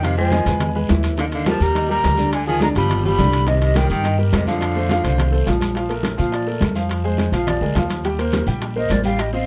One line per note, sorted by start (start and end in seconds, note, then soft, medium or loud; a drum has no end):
0.00 0.41 F2 medium
0.00 0.17 C3 medium
0.00 0.12 D#3 medium
0.00 0.13 D#4 medium
0.00 0.13 D#5 medium
0.00 high bongo medium
0.00 long guiro medium
0.04 0.18 F5 loud
0.04 high conga soft
0.04 high timbale medium
0.17 0.58 F3 medium
0.17 0.29 G#3 medium
0.17 0.30 G#4 medium
0.17 0.30 C5 medium
0.17 0.73 G#5 loud
0.17 high bongo soft
0.17 high conga soft
0.32 0.44 D#3 medium
0.32 0.44 D#4 medium
0.32 0.44 D#5 medium
0.32 high bongo medium
0.32 high conga medium
0.32 high timbale medium
0.32 low timbale medium
0.32 short guiro medium
0.46 0.86 E2 medium
0.46 0.70 G#3 medium
0.46 0.71 G#4 medium
0.46 0.71 B4 medium
0.46 high conga soft
0.46 high timbale medium
0.46 short guiro medium
0.60 high bongo medium
0.60 high conga soft
0.60 low conga medium
0.60 high timbale loud
0.60 long guiro medium
0.75 0.87 G#3 medium
0.75 0.87 G#4 medium
0.75 0.87 B4 medium
0.75 high bongo soft
0.75 high conga soft
0.89 1.56 D#2 medium
0.89 1.13 E3 medium
0.89 1.13 E4 medium
0.89 1.13 E5 medium
0.89 high bongo medium
0.89 low bongo medium
0.89 high conga medium
0.89 high timbale medium
0.89 low timbale medium
0.89 short guiro medium
1.03 high bongo soft
1.03 high conga medium
1.03 high timbale medium
1.03 short guiro medium
1.17 1.26 D3 medium
1.17 1.42 D#3 medium
1.17 1.42 D#4 medium
1.17 1.42 D#5 medium
1.17 1.26 F5 medium
1.17 high bongo medium
1.17 high conga soft
1.17 high timbale medium
1.17 long guiro medium
1.32 1.48 D3 medium
1.32 1.49 F5 medium
1.32 high bongo soft
1.32 high conga soft
1.32 high timbale medium
1.46 1.62 F3 medium
1.46 1.70 G3 medium
1.46 1.70 G4 medium
1.46 1.70 A#4 medium
1.46 1.65 A5 loud
1.46 high bongo medium
1.46 high conga loud
1.46 high timbale medium
1.46 low timbale medium
1.46 short guiro medium
1.60 2.01 D#2 medium
1.60 1.90 G3 medium
1.60 1.90 A#5 loud
1.60 high conga soft
1.60 short guiro medium
1.75 1.87 D#3 medium
1.75 1.87 D#4 medium
1.75 1.88 D#5 medium
1.75 high bongo medium
1.75 high conga soft
1.75 high timbale medium
1.75 long guiro medium
1.89 2.13 G3 medium
1.89 2.30 G3 medium
1.89 2.13 G4 medium
1.89 2.13 A#4 medium
1.89 2.30 A#5 loud
1.89 high bongo soft
1.89 high conga soft
2.04 2.70 D2 medium
2.04 high bongo medium
2.04 low bongo medium
2.04 high conga medium
2.04 high timbale medium
2.04 low timbale medium
2.04 short guiro medium
2.18 2.42 D3 medium
2.18 2.42 D4 medium
2.18 2.42 D5 medium
2.18 high bongo soft
2.18 high conga medium
2.18 short guiro medium
2.32 2.47 D3 medium
2.32 2.47 G#5 loud
2.32 high bongo medium
2.32 high conga soft
2.32 high timbale loud
2.32 long guiro medium
2.47 2.61 D#3 medium
2.47 2.59 F3 medium
2.47 2.59 F4 medium
2.47 2.59 G#4 medium
2.47 2.61 G#5 loud
2.47 high bongo soft
2.61 2.73 D3 medium
2.61 2.68 G#3 medium
2.61 2.73 D4 medium
2.61 2.74 D5 medium
2.61 2.69 A#5 loud
2.61 high bongo medium
2.61 high conga medium
2.61 high timbale medium
2.61 low timbale medium
2.61 short guiro medium
2.75 3.16 G1 loud
2.75 2.99 F3 medium
2.75 3.03 G3 medium
2.75 2.99 F4 medium
2.75 2.99 G4 medium
2.75 3.04 B5 loud
2.75 high conga soft
2.75 high timbale medium
2.75 short guiro medium
2.90 high bongo medium
2.90 high conga soft
2.90 low conga medium
2.90 high timbale medium
2.90 long guiro medium
3.04 3.16 F3 medium
3.04 3.49 G3 medium
3.04 3.17 F4 medium
3.04 3.16 G4 medium
3.04 3.50 B5 loud
3.04 high bongo soft
3.04 high conga soft
3.04 low conga medium
3.18 3.85 C2 loud
3.18 3.42 D3 medium
3.18 3.42 D4 medium
3.18 3.42 D5 medium
3.18 high bongo medium
3.18 low bongo medium
3.18 high conga medium
3.18 high timbale medium
3.18 low timbale medium
3.18 short guiro medium
3.32 high bongo soft
3.32 high conga medium
3.32 high timbale medium
3.32 short guiro medium
3.47 3.61 C3 medium
3.47 3.71 D#3 medium
3.47 3.71 D#4 medium
3.47 3.71 D#5 medium
3.47 3.62 D#5 medium
3.47 high bongo medium
3.47 high timbale medium
3.47 long guiro medium
3.61 3.78 C3 medium
3.61 3.78 D#5 medium
3.61 high bongo soft
3.61 high conga soft
3.61 high timbale medium
3.75 3.91 D#3 medium
3.75 3.99 G3 medium
3.75 3.99 G4 medium
3.75 4.00 A#4 medium
3.75 3.90 G5 medium
3.75 high bongo medium
3.75 high conga medium
3.75 high timbale medium
3.75 low timbale medium
3.75 short guiro medium
3.90 4.30 G2 loud
3.90 4.17 D#3 medium
3.90 4.17 G5 loud
3.90 high conga soft
3.90 short guiro medium
4.04 4.16 D#3 medium
4.04 4.16 D#4 medium
4.04 4.16 D#5 medium
4.04 high bongo medium
4.04 high conga soft
4.04 high timbale medium
4.04 long guiro medium
4.18 4.42 G3 medium
4.18 4.42 G4 medium
4.18 4.42 A#4 medium
4.18 high bongo soft
4.18 high conga soft
4.33 4.99 F2 medium
4.33 4.47 C3 medium
4.33 4.47 D#5 medium
4.33 high bongo medium
4.33 low bongo medium
4.33 high conga medium
4.33 high timbale medium
4.33 low timbale medium
4.33 short guiro medium
4.47 5.43 D3 medium
4.47 4.71 F3 medium
4.47 4.71 F4 medium
4.47 4.71 F5 medium
4.47 5.43 F5 medium
4.47 high bongo soft
4.47 high conga medium
4.47 short guiro medium
4.61 high bongo medium
4.61 high conga soft
4.61 high timbale medium
4.61 long guiro medium
4.75 4.87 A3 medium
4.75 4.88 A4 medium
4.75 4.88 C5 medium
4.75 high bongo soft
4.75 high conga soft
4.89 5.02 F3 medium
4.89 5.02 F4 medium
4.89 5.02 F5 medium
4.89 high bongo medium
4.89 high conga medium
4.89 high timbale medium
4.89 low timbale medium
4.89 short guiro medium
5.03 5.44 C2 medium
5.03 5.27 A3 medium
5.03 5.27 A4 medium
5.03 5.27 C5 medium
5.03 high conga soft
5.03 high timbale medium
5.03 short guiro medium
5.18 high bongo medium
5.18 high conga soft
5.18 low conga medium
5.18 high timbale loud
5.18 long guiro medium
5.32 5.44 A3 medium
5.32 5.44 A4 medium
5.32 5.44 C5 medium
5.32 high bongo soft
5.32 high conga soft
5.46 6.13 A#1 medium
5.46 5.70 F3 medium
5.46 5.70 F4 medium
5.46 5.70 F5 medium
5.46 high bongo medium
5.46 low bongo medium
5.46 high conga medium
5.46 high timbale medium
5.46 low timbale medium
5.46 short guiro medium
5.60 high bongo soft
5.60 high conga medium
5.60 high timbale medium
5.60 short guiro medium
5.75 5.88 F3 medium
5.75 5.88 F4 medium
5.75 5.88 F5 medium
5.75 high bongo medium
5.75 high conga soft
5.75 high timbale medium
5.75 long guiro medium
5.89 6.13 A3 medium
5.89 6.13 A4 medium
5.89 6.13 A#4 medium
5.89 high bongo soft
5.89 high conga soft
5.89 high timbale medium
6.03 high bongo medium
6.03 high conga medium
6.03 high timbale medium
6.03 low timbale medium
6.03 short guiro medium
6.18 6.59 A#2 medium
6.18 6.41 F3 medium
6.18 6.42 F4 medium
6.18 6.42 F5 medium
6.18 6.35 F5 medium
6.18 high conga soft
6.18 short guiro medium
6.32 6.62 D5 medium
6.32 high bongo medium
6.32 high conga soft
6.32 high timbale medium
6.32 long guiro medium
6.46 6.70 A3 medium
6.46 6.71 A4 medium
6.46 6.71 A#4 medium
6.46 high bongo soft
6.46 high conga soft
6.61 7.27 F2 medium
6.61 high bongo medium
6.61 low bongo medium
6.61 high conga medium
6.61 high timbale medium
6.61 low timbale medium
6.61 short guiro medium
6.75 6.99 F3 medium
6.75 6.99 F4 medium
6.75 6.99 F5 medium
6.75 high bongo soft
6.75 high conga medium
6.75 short guiro medium
6.89 high bongo medium
6.89 high conga soft
6.89 high timbale medium
6.89 long guiro medium
7.04 7.28 G#3 medium
7.04 7.28 G#4 medium
7.04 7.28 C5 medium
7.04 high bongo soft
7.18 high bongo medium
7.18 high conga medium
7.18 high timbale medium
7.18 low timbale medium
7.18 short guiro medium
7.32 7.59 A#1 medium
7.32 7.56 F3 medium
7.32 7.57 F4 medium
7.32 7.49 F5 medium
7.32 7.57 F5 medium
7.32 high conga soft
7.32 high timbale medium
7.32 short guiro medium
7.47 7.76 D5 medium
7.47 high bongo medium
7.47 high conga soft
7.47 low conga medium
7.47 high timbale loud
7.47 long guiro medium
7.61 7.75 D2 medium
7.61 7.73 G#3 medium
7.61 7.74 G#4 medium
7.61 7.74 A#4 medium
7.61 high bongo soft
7.61 high conga soft
7.75 8.42 D#2 medium
7.75 7.99 F3 medium
7.75 8.00 F4 medium
7.75 8.00 F5 medium
7.75 high bongo medium
7.75 low bongo medium
7.75 high conga medium
7.75 high timbale medium
7.75 low timbale medium
7.75 short guiro medium
7.90 high bongo soft
7.90 high conga medium
7.90 high timbale medium
7.90 short guiro medium
8.04 8.16 G3 medium
8.04 8.17 G4 medium
8.04 8.17 G5 medium
8.04 high bongo medium
8.04 high conga soft
8.04 high timbale medium
8.04 long guiro medium
8.19 8.42 A#3 medium
8.19 8.42 A#4 medium
8.19 8.42 C5 medium
8.19 high bongo soft
8.19 high conga soft
8.19 high timbale medium
8.32 high bongo medium
8.32 high conga medium
8.32 high timbale medium
8.32 low timbale medium
8.32 short guiro medium
8.47 8.87 A#1 medium
8.47 8.71 G3 medium
8.47 8.71 G4 medium
8.47 8.71 G5 medium
8.47 high conga soft
8.47 short guiro medium
8.61 high bongo medium
8.61 high conga soft
8.61 high timbale medium
8.61 long guiro medium
8.76 8.99 A#3 medium
8.76 9.00 A#4 medium
8.76 9.00 C5 medium
8.76 8.93 D#5 medium
8.76 high bongo soft
8.76 high conga soft
8.89 9.46 A1 medium
8.89 9.04 D5 medium
8.89 high bongo medium
8.89 low bongo medium
8.89 high conga medium
8.89 high timbale medium
8.89 low timbale medium
8.89 short guiro medium
9.04 9.28 G3 medium
9.04 9.28 G4 medium
9.04 9.22 F5 loud
9.04 9.28 G5 medium
9.04 high bongo soft
9.04 high conga medium
9.04 short guiro medium
9.18 9.33 D#5 medium
9.18 high bongo medium
9.18 high conga soft
9.18 high timbale loud
9.18 long guiro medium
9.33 9.46 C4 medium
9.33 9.46 C5 medium
9.33 9.46 D#5 medium
9.33 9.46 F5 medium
9.33 high bongo soft
9.33 high conga soft